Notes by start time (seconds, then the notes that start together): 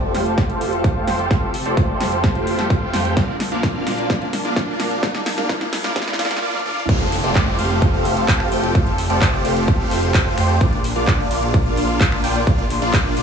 Already playing: F1 F3 A3 C4 F4 G4 A4 C5 D5, riser
0.14 F1 A3 F4 G4 C5 F5, snare, open hi-hat
0.26 closed hi-hat
0.38 kick, snare, closed hi-hat
0.49 F1 A3 F4 G4 C5 F5, closed hi-hat
0.61 open hi-hat
0.73 closed hi-hat
0.84 F1 A3 F4 G4 F5, kick, closed hi-hat
1.07 F1 A3 F4 G4 C5 G5, snare, open hi-hat
1.19 closed hi-hat
1.31 F1 A3 F4 G4 C5 F5, kick, snare, closed hi-hat
1.54 open hi-hat
1.66 F1 A3 F4 G4 C5 D5, closed hi-hat
1.77 kick, closed hi-hat
2.00 F1 A3 F4 G4 C5 F5, snare, open hi-hat
2.12 closed hi-hat
2.24 kick, snare, closed hi-hat
2.35 F1 A3 F4 G4 C5 F5, closed hi-hat
2.47 open hi-hat
2.59 snare, closed hi-hat
2.70 F1 A3 F4 G4 F5, kick, closed hi-hat
2.94 F2 A3 F4 G4 C5 G5, snare, open hi-hat
3.05 closed hi-hat
3.17 A#3 D4 F4 D5 F5, kick, snare, closed hi-hat
3.40 snare, open hi-hat
3.52 A#1 A#3 D4 F4 D5 F5, closed hi-hat
3.63 kick, snare, closed hi-hat
3.87 A#1 A#3 D4 F4 D5 F5, snare, open hi-hat
3.98 closed hi-hat
4.10 A#1 A#3 D4 F4 D5 F5, kick, snare, closed hi-hat
4.22 closed hi-hat
4.33 snare, open hi-hat
4.45 A#1 A#3 D4 F4 D5 F5, closed hi-hat
4.56 kick, snare, closed hi-hat
4.80 A#1 A#3 D4 F4 D5 F5, snare, open hi-hat
4.91 closed hi-hat
5.03 A#1 A#3 D4 F4 D5 F5, kick, snare, closed hi-hat
5.15 snare
5.26 snare, open hi-hat
5.38 A#1 A#3 D4 F4 D5 F5, snare, closed hi-hat
5.49 A#3 D4 F4 F5, kick, snare, closed hi-hat
5.61 snare
5.73 snare, open hi-hat
5.84 A#1 A#3 D4 F4 D5 F5, snare, closed hi-hat
5.96 A#3, kick, snare, closed hi-hat
6.02 snare
6.08 snare, closed hi-hat
6.13 snare
6.19 A#1 A#3 D4 F4 D5 F5, snare, open hi-hat
6.25 snare
6.31 snare, closed hi-hat
6.37 snare
6.42 A#3 D4 F4 D5 F5
6.54 high tom
6.66 A#3 D4 F4 D5 F5, mid tom
6.77 mid tom
6.89 F1 F3 A3 C4 F4 G4 A4 C5 F5, kick, closed hi-hat, crash, downlifter
7.01 closed hi-hat
7.12 open hi-hat
7.24 F1 A3 F4 G4 C5 D5, closed hi-hat
7.35 kick, clap, closed hi-hat
7.59 F1 A3 F4 G4 C5 F5, open hi-hat
7.70 closed hi-hat
7.82 kick, closed hi-hat
7.94 F1 A3 F4 G4 C5 F5
8.05 open hi-hat
8.17 closed hi-hat
8.28 F1 F4, kick, clap, closed hi-hat
8.40 finger snap
8.52 F1 A3 F4 G4 C5 G5, open hi-hat
8.64 closed hi-hat
8.75 F1 A3 F4 G4 C5 F5, kick, closed hi-hat
8.87 closed hi-hat
8.98 open hi-hat
9.10 F1 A3 F4 G4 C5 D5, closed hi-hat
9.21 kick, clap, closed hi-hat
9.45 F1 A3 F4 G4 C5 F5, open hi-hat
9.57 closed hi-hat
9.68 kick, closed hi-hat
9.80 F1 A3 F4 G4 C5 F5
9.91 open hi-hat
10.03 closed hi-hat
10.14 F1 A3 G4 C5, kick, clap, closed hi-hat
10.38 F2 A3 F4 G4 C5 G5, finger snap, open hi-hat
10.49 closed hi-hat
10.61 A#1 A#3 D4 F4 D5 F5, kick, closed hi-hat
10.73 closed hi-hat
10.84 open hi-hat
10.96 A#1 A#3 D4 F4 D5 F5, closed hi-hat
11.07 kick, clap, closed hi-hat
11.31 A#1 A#3 D4 F4 D5 F5, open hi-hat
11.43 closed hi-hat
11.54 kick, closed hi-hat
11.66 A#1 A#3 D4 F4 D5 F5
11.77 open hi-hat
11.89 closed hi-hat
12.00 A#1 A#3 D4 F4, kick, clap, closed hi-hat
12.12 finger snap
12.24 A#1 A#3 D4 F4 D5 G5, open hi-hat
12.36 closed hi-hat
12.47 A#1 A#3 D4 F4 F5, kick, closed hi-hat
12.59 closed hi-hat
12.70 open hi-hat
12.82 A#1 A#3 D4 F4 D5 F5, closed hi-hat
12.94 kick, clap, closed hi-hat
13.17 A#1 A#3 D4 F4 D5 F5, open hi-hat